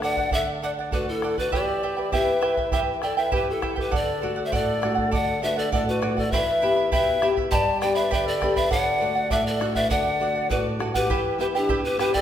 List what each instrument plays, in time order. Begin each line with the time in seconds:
Already playing: nylon-string guitar D3 A3 D4 F#4
0.02 charango A4 D5 F#5, quena D5, pan flute F#5, bombo rim
0.17 charango D5 F#5, bombo low
0.31 nylon-string guitar D3, charango A4 D5 F#5, quena A4, pan flute E5, bombo low
0.62 charango A4 D5 F#5, quena D5, pan flute F#5
0.79 charango D5 F#5
0.91 nylon-string guitar A3 D4 F#4, quena F#4, charango A4 D5 F#5, pan flute B4, bombo low
1.09 quena E4, pan flute A4
1.22 charango A4 D5 F#5, bombo rim
1.38 quena F#4, pan flute B4, charango D5 F#5, bombo low
1.51 nylon-string guitar E3, charango E4 G4 B4 E5 G5, quena G4, pan flute D5, bombo low
1.83 charango E4 B4 E5 G5
1.97 charango E4 B4 G5
2.12 nylon-string guitar B3 E4 G4, charango E4 G4 B4 E5 G5, quena B4, pan flute E5, bombo low
2.41 charango E4 B4 E5 G5, bombo rim
2.57 charango E4 B4 G5, bombo low
2.72 nylon-string guitar E3, charango E4 G4 B4 E5 G5, quena B4, pan flute E5, bombo low
3.02 charango E4 B4 E5 G5, quena A4, pan flute D5, bombo rim
3.17 charango E4 B4 G5, quena B4, pan flute E5
3.32 nylon-string guitar B3 E4 G4, charango E4 G4 B4 E5 G5, quena G4, pan flute B4, bombo low
3.50 quena F#4, pan flute A4
3.54 quena E4
3.62 charango E4 B4 E5 G5, bombo rim, bombo low
3.76 charango E4 B4 G5, bombo low
3.80 quena G4, pan flute B4
3.91 nylon-string guitar D3, charango A4 D5 F#5, pan flute D5, bombo low
3.96 quena A4 B4
4.22 nylon-string guitar A3 D4 F#4, charango A4 D5 F#5
4.36 charango D5 F#5
4.45 quena C5, pan flute E5
4.52 nylon-string guitar A2, charango A4 D5 F#5, quena A4, pan flute D5, bombo low
4.81 nylon-string guitar A3 D4 F#4, charango A4 D5 F#5, bombo rim
4.95 charango D5 F#5, bombo low
5.11 nylon-string guitar D3, charango A4 D5 F#5, quena D#5, pan flute F#5, bombo low
5.19 quena D5
5.42 nylon-string guitar A3 D4 F#4, charango A4 D5 F#5, quena B4, pan flute E5
5.56 quena A4, charango D5 F#5, pan flute D5
5.72 nylon-string guitar A2, charango A4 D5 F#5, quena A4, pan flute D5, bombo low
5.88 quena F#4, pan flute B4
6.01 nylon-string guitar A3 D4 F#4, charango A4 D5 F#5, bombo rim
6.17 quena A4, charango D5 F#5, pan flute D5, bombo low
6.32 nylon-string guitar E3, charango E4 B4 E5 G5 B5, quena C5, pan flute E5, bombo low
6.36 quena B4
6.62 nylon-string guitar B3 E4 G4, charango E4 E5 G5 B5
6.76 charango E4 E5 B5
6.92 nylon-string guitar B2, charango E4 B4 E5 G5 B5, quena B4, pan flute E5, bombo low
7.22 nylon-string guitar B3 E4 G4, charango E4 E5 G5 B5, bombo rim
7.37 charango E4 E5 B5, bombo low
7.51 nylon-string guitar G2, charango G4 B4 D5 G5 B5, quena D5 D#5, pan flute A5, bombo low
7.81 nylon-string guitar B3 D4 G4, charango B4 D5 G5 B5, quena D5, pan flute G5, bombo rim
7.95 charango B4 D5 B5, quena B4, pan flute E5
8.11 nylon-string guitar D3, charango G4 B4 D5 G5 B5, quena B4, pan flute E5, bombo low
8.26 quena A4, pan flute D5
8.41 nylon-string guitar B3 D4 G4, charango B4 D5 G5 B5, bombo rim, bombo low
8.56 quena B4, charango B4 D5 B5, pan flute E5, bombo low
8.70 nylon-string guitar D3, charango A4 D5 F#5, quena D5, pan flute F#5, bombo low
9.01 nylon-string guitar A3 D4 F#4, charango A4 D5 F#5
9.15 charango D5 F#5
9.30 nylon-string guitar A2, charango A4 D5 F#5, quena A4, pan flute E5, bombo low
9.47 quena B4, pan flute D5
9.51 quena A4
9.60 nylon-string guitar A3 D4 F#4, charango A4 D5 F#5, bombo rim
9.75 quena B4, charango D5 F#5, pan flute E5, bombo low
9.90 nylon-string guitar D3, charango A4 D5 F#5, quena D5, pan flute F#5, bombo low
10.19 nylon-string guitar A3 D4 F#4, charango A4 D5 F#5
10.36 charango D5 F#5
10.50 nylon-string guitar A2, quena F#4, charango A4 D5 F#5, pan flute B4, bombo low
10.79 nylon-string guitar A3 D4 F#4, charango A4 D5 F#5, bombo rim
10.94 quena G4, pan flute B4, charango D5 F#5, bombo low
11.09 nylon-string guitar E3, charango E4 G4 B4 E5 G5, bombo low
11.38 nylon-string guitar B3 E4 G4, charango E4 B4 E5 G5, quena G4, pan flute B4
11.55 quena D4, charango E4 B4 G5, pan flute G4
11.68 nylon-string guitar B2, charango E4 G4 B4 E5 G5, bombo low
11.85 quena G4, pan flute B4
11.97 nylon-string guitar B3 E4 G4, charango E4 B4 E5 G5, quena G4, pan flute B4, bombo rim
12.14 charango E4 B4 G5, quena A4, pan flute D5, bombo low